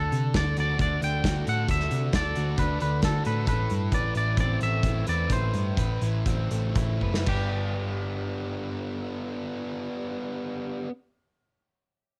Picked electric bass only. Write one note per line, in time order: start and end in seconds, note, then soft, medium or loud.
0.12 0.31 C3 medium
0.34 0.53 D2 medium
0.57 0.76 D2 medium
0.79 0.98 D2 medium
1.02 1.20 D2 medium
1.24 1.43 D2 medium
1.47 1.66 A2 medium
1.68 1.87 D2 medium
1.91 2.10 C3 medium
2.13 2.32 D2 medium
2.37 2.55 D2 medium
2.58 2.77 D2 medium
2.82 3.00 D2 medium
3.03 3.22 D2 medium
3.26 3.45 A2 medium
3.47 3.66 A1 medium
3.71 3.90 G2 medium
3.92 4.11 A1 medium
4.15 4.34 A1 medium
4.37 4.57 A1 medium
4.62 4.81 A1 medium
4.83 5.03 A1 medium
5.08 5.27 E2 medium
5.30 5.50 A1 medium
5.54 5.74 G2 medium
5.77 5.98 A1 medium
6.02 6.23 A1 medium
6.26 6.47 A1 medium
6.51 6.73 A1 medium
6.76 6.98 A1 medium
7.01 7.24 F#1 medium
7.27 10.84 G1 medium